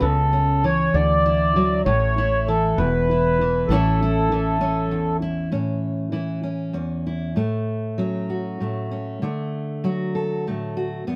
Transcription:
0.00 0.92 C#2 medium
0.00 0.62 C#3 medium
0.00 0.65 A4 medium
0.33 0.94 C#4 medium
0.64 1.56 E3 medium
0.64 0.95 C#5 loud
0.94 1.83 D2 medium
0.94 1.82 D3 medium
0.94 1.81 D5 loud
1.26 2.18 E4 medium
1.56 1.82 F#3 medium
1.85 2.75 A1 medium
1.85 2.77 A2 medium
1.85 2.48 C#5 loud
2.18 3.11 E4 medium
2.48 3.41 E3 medium
2.48 2.79 A4 medium
2.78 3.67 E1 medium
2.78 3.69 E2 medium
2.78 3.72 B4 loud
3.11 3.72 E4 medium
3.41 3.71 E3 medium
3.67 5.49 A1 medium
3.67 4.92 A2 medium
3.67 4.31 E3 medium
3.67 5.17 A4 medium
3.72 4.60 C#4 medium
3.72 4.01 E4 medium
4.02 5.21 E4 medium
4.32 6.11 E3 medium
4.61 5.49 C#4 medium
4.91 5.52 E2 medium
5.22 5.49 E4 medium
5.52 6.75 A2 medium
5.52 6.42 C#4 medium
6.12 7.36 E3 medium
6.12 6.43 E4 medium
6.43 6.73 C#4 soft
6.73 7.36 E2 soft
6.73 7.32 C#4 soft
7.07 7.33 E4 soft
7.36 8.59 A2 medium
7.36 8.60 A3 medium
7.98 9.17 F#3 medium
7.98 8.90 C#4 medium
8.30 9.18 F#4 soft
8.60 9.22 A2 soft
8.60 9.22 A3 soft
8.91 9.22 C#4 soft
9.22 11.03 D3 medium
9.22 10.45 A3 medium
9.84 11.03 F#3 medium
9.84 10.76 F#4 soft
10.15 11.03 A4 medium
10.47 11.04 A2 soft
10.47 11.07 A3 soft
10.77 11.03 F#4 medium
11.07 11.16 E2 medium
11.07 11.16 B3 medium

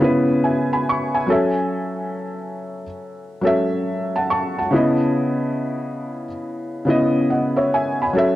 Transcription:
0.00 1.16 C#3 medium
0.00 1.17 B3 medium
0.00 1.18 E4 medium
0.00 1.19 B4 medium
0.44 0.71 E5 soft
0.44 0.71 G#5 medium
0.73 0.87 G#5 medium
0.73 0.87 B5 medium
0.89 1.15 C#6 medium
1.15 1.31 E5 soft
1.15 1.56 G#5 medium
1.27 2.81 F#3 medium
1.27 2.82 C#4 medium
1.27 2.83 A4 medium
1.32 2.84 E5 medium
3.41 4.59 F#3 medium
3.41 4.60 C#4 medium
3.41 4.60 A4 medium
3.46 4.61 E5 medium
4.16 4.30 F#5 medium
4.16 4.29 A5 medium
4.30 4.57 A5 medium
4.30 4.57 C#6 medium
4.58 4.99 F#5 medium
4.58 4.99 A5 medium
4.71 6.25 C#3 medium
4.71 6.26 B3 medium
4.71 6.26 E4 medium
4.76 6.27 D#5 medium
6.85 8.02 C#3 medium
6.85 8.03 B3 medium
6.85 8.04 E4 medium
6.90 7.29 D#5 medium
7.30 7.57 D#5 medium
7.30 7.57 F#5 medium
7.56 7.71 C#5 medium
7.56 7.71 E5 medium
7.74 8.00 E5 medium
7.74 8.00 G#5 medium
8.02 8.36 G#5 medium
8.02 8.36 B5 medium
8.13 8.36 F#3 medium
8.13 8.36 C#4 medium
8.13 8.36 A4 medium
8.18 8.36 E5 medium

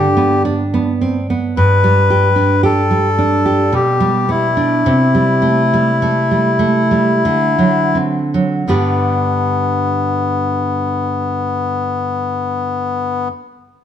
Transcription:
0.00 1.55 G2 soft
0.00 0.35 D4 soft
0.00 0.43 G4 medium
0.17 0.63 B3 soft
0.45 0.91 D4 soft
0.74 1.19 B3 soft
1.01 1.30 C4 soft
1.30 1.58 B3 soft
1.57 3.71 G2 soft
1.57 2.62 B4 medium
1.84 2.28 G3 soft
2.10 2.55 G4 soft
2.36 2.81 D4 soft
2.63 3.08 G4 soft
2.63 3.74 A4 medium
2.91 3.35 G3 soft
3.18 3.63 D4 soft
3.46 3.74 G4 soft
3.72 4.83 B2 soft
3.72 4.31 G4 medium
4.00 4.47 G3 soft
4.29 4.75 B3 soft
4.29 7.98 E4 medium
4.57 4.86 D4 soft
4.86 7.23 C3 soft
5.15 5.61 G3 soft
5.42 5.90 A3 soft
5.74 6.20 G3 soft
6.02 6.50 A3 soft
6.31 6.81 G3 soft
6.59 7.12 A3 soft
6.91 7.26 G3 soft
7.25 8.63 D3 soft
7.59 8.18 F#3 soft
7.95 8.53 C4 soft
8.34 8.68 F#3 soft
8.68 13.28 G2 soft
8.68 13.29 D3 soft
8.68 13.28 B3 soft
8.68 13.29 B3 soft
8.68 13.30 D4 soft
8.68 13.30 G4 soft
8.68 13.30 B4 soft

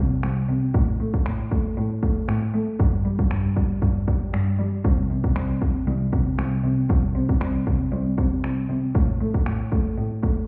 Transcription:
0.00 0.14 C3 loud
0.23 0.40 C2 medium
0.23 finger snap loud
0.49 0.66 C3 medium
0.74 0.91 A2 loud
0.74 kick loud
1.00 1.17 A3 medium
1.14 kick medium
1.26 1.42 A2 medium
1.26 finger snap loud
1.51 1.68 A3 loud
1.51 kick medium
1.77 1.94 A2 medium
2.03 2.19 A3 medium
2.03 kick medium
2.28 2.45 A2 loud
2.28 finger snap loud
2.54 2.71 A3 medium
2.80 2.96 G2 medium
2.80 kick loud
3.05 3.22 G3 loud
3.19 kick medium
3.31 3.48 G2 medium
3.31 finger snap loud
3.57 3.73 G3 loud
3.57 kick medium
3.82 3.99 G2 loud
3.82 kick medium
4.08 4.25 G3 loud
4.08 kick medium
4.34 4.59 G2 medium
4.34 finger snap loud
4.59 4.76 G3 medium
4.85 5.01 C2 loud
4.85 kick loud
5.10 5.27 C3 medium
5.24 kick medium
5.36 5.53 C2 loud
5.36 finger snap loud
5.62 5.78 C3 medium
5.62 kick medium
5.87 6.04 C2 loud
6.13 6.30 C3 medium
6.13 kick medium
6.39 6.55 C2 medium
6.39 finger snap loud
6.64 6.81 C3 loud
6.90 7.06 C2 loud
6.90 kick loud
7.15 7.32 C3 loud
7.29 kick medium
7.41 7.58 C2 medium
7.41 finger snap loud
7.67 7.84 C3 loud
7.67 kick medium
7.92 8.09 C2 loud
8.18 8.35 C3 loud
8.18 kick medium
8.44 8.61 C2 medium
8.44 finger snap loud
8.69 8.86 C3 loud
8.95 9.12 A2 loud
8.95 kick loud
9.21 9.37 A3 medium
9.34 kick medium
9.46 9.63 A2 medium
9.46 finger snap loud
9.72 9.89 A3 loud
9.72 kick medium
9.98 10.14 A2 medium
10.23 10.40 A3 medium
10.23 kick medium

